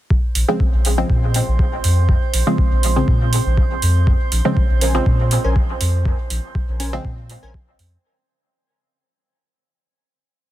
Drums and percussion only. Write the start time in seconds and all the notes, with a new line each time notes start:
0.10 kick
0.35 open hi-hat
0.60 kick
0.85 open hi-hat
1.10 kick
1.34 open hi-hat
1.59 kick
1.84 open hi-hat
2.09 kick
2.34 open hi-hat
2.58 kick
2.83 open hi-hat
3.08 kick
3.33 open hi-hat
3.58 kick
3.82 open hi-hat
4.07 kick
4.32 open hi-hat
4.57 kick
4.81 open hi-hat
5.06 kick
5.31 open hi-hat
5.56 kick
5.81 open hi-hat
6.05 kick
6.30 open hi-hat
6.55 kick
6.80 open hi-hat
7.05 kick
7.30 open hi-hat
7.54 kick
7.79 open hi-hat